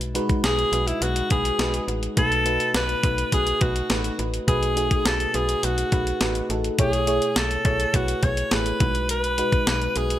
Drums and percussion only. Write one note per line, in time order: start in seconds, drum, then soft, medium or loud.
0.01 closed hi-hat soft
0.15 closed hi-hat medium
0.29 kick medium
0.29 closed hi-hat soft
0.44 snare loud
0.44 closed hi-hat medium
0.59 closed hi-hat soft
0.73 closed hi-hat medium
0.88 closed hi-hat medium
1.02 closed hi-hat medium
1.16 closed hi-hat medium
1.30 kick medium
1.30 closed hi-hat medium
1.45 closed hi-hat medium
1.59 snare loud
1.59 closed hi-hat medium
1.74 closed hi-hat medium
1.88 closed hi-hat medium
2.03 closed hi-hat soft
2.17 kick loud
2.17 closed hi-hat medium
2.32 closed hi-hat soft
2.46 closed hi-hat medium
2.60 closed hi-hat soft
2.74 snare loud
2.74 closed hi-hat medium
2.89 closed hi-hat soft
3.03 kick loud
3.03 closed hi-hat medium
3.18 closed hi-hat medium
3.32 kick medium
3.32 closed hi-hat loud
3.47 closed hi-hat medium
3.61 kick medium
3.61 closed hi-hat medium
3.76 closed hi-hat soft
3.90 snare loud
3.90 closed hi-hat medium
4.04 closed hi-hat medium
4.19 closed hi-hat medium
4.34 closed hi-hat soft
4.48 kick loud
4.48 closed hi-hat loud
4.63 closed hi-hat soft
4.77 closed hi-hat medium
4.91 kick medium
4.91 closed hi-hat soft
5.05 snare loud
5.05 closed hi-hat medium
5.20 closed hi-hat soft
5.34 closed hi-hat medium
5.49 closed hi-hat medium
5.63 closed hi-hat loud
5.78 closed hi-hat medium
5.92 kick medium
5.92 closed hi-hat medium
6.07 closed hi-hat medium
6.21 snare loud
6.21 closed hi-hat medium
6.35 closed hi-hat medium
6.50 closed hi-hat medium
6.64 closed hi-hat soft
6.79 kick loud
6.79 closed hi-hat loud
6.93 closed hi-hat soft
7.07 closed hi-hat medium
7.22 closed hi-hat soft
7.36 snare loud
7.36 closed hi-hat medium
7.51 closed hi-hat soft
7.65 kick medium
7.65 closed hi-hat medium
7.80 closed hi-hat medium
7.94 kick medium
7.94 closed hi-hat medium
8.08 closed hi-hat medium
8.23 kick medium
8.23 closed hi-hat medium
8.37 closed hi-hat medium
8.51 snare loud
8.51 closed hi-hat medium
8.66 closed hi-hat medium
8.80 kick loud
8.80 closed hi-hat medium
8.95 closed hi-hat soft
9.09 closed hi-hat loud
9.24 closed hi-hat soft
9.38 closed hi-hat medium
9.52 kick medium
9.52 closed hi-hat soft
9.67 snare loud
9.67 closed hi-hat medium
9.82 closed hi-hat soft
9.96 closed hi-hat medium
10.10 closed hi-hat medium